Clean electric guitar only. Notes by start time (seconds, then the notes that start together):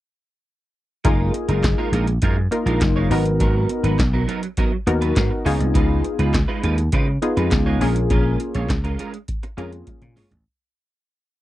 1.04 G#3 D#4 F4 A#4
1.34 muted clean electric guitar stroke
1.49 G#3 D#4 F4 A#4
1.63 muted clean electric guitar stroke
1.78 G#3 D#4 F4 A#4
1.93 G#3 D#4 F4 A#4
2.08 muted clean electric guitar stroke
2.22 G#3 D#4 F4 A#4
2.37 muted clean electric guitar stroke
2.52 muted clean electric guitar stroke
2.66 G#3 D#4 F4 A#4
2.81 muted clean electric guitar stroke
2.96 G#3 D#4 F4 C#5
3.11 F#3 B3 D#4 A#4
3.26 muted clean electric guitar stroke
3.40 F#3 B3 D#4 A#4
3.70 muted clean electric guitar stroke
3.84 F#3 B3 D#4 B4
3.99 muted clean electric guitar stroke
4.13 F#3 B3 D#4 A#4
4.28 F#3 B3 D#4 A#4
4.43 muted clean electric guitar stroke
4.58 F#3 B3 D#4 A#4
4.72 muted clean electric guitar stroke
4.87 muted clean electric guitar stroke
5.01 F#3 B3 D#4 B4
5.16 muted clean electric guitar stroke
5.31 muted clean electric guitar stroke
5.45 G#3 D#4 F4 C#5
5.60 muted clean electric guitar stroke
5.74 G#3 D#4 F4 B4
6.04 muted clean electric guitar stroke
6.19 G#3 D#4 F4 B4
6.34 muted clean electric guitar stroke
6.48 G#3 D#4 F4 B4
6.63 G#3 D#4 F4 B4
6.78 muted clean electric guitar stroke
6.93 G#3 D#4 F4 B4
7.08 muted clean electric guitar stroke
7.22 muted clean electric guitar stroke
7.37 G#3 D#4 F4 B4
7.51 muted clean electric guitar stroke
7.66 G#3 D#4 F4 C#5
7.81 G#3 C#4 F4 A#4
7.96 muted clean electric guitar stroke
8.10 G#3 C#4 F4 A#4
8.40 muted clean electric guitar stroke
8.55 G#3 C#4 F4 C#5
8.70 muted clean electric guitar stroke
8.84 G#3 C#4 F4 A#4
8.99 G#3 C#4 F4 A#4
9.13 muted clean electric guitar stroke
9.43 muted clean electric guitar stroke
9.57 G#3 C#4 F4 A#4
9.72 muted clean electric guitar stroke
9.87 muted clean electric guitar stroke
10.02 muted clean electric guitar stroke
10.16 G#3 C#4 F4 C#5
10.31 muted clean electric guitar stroke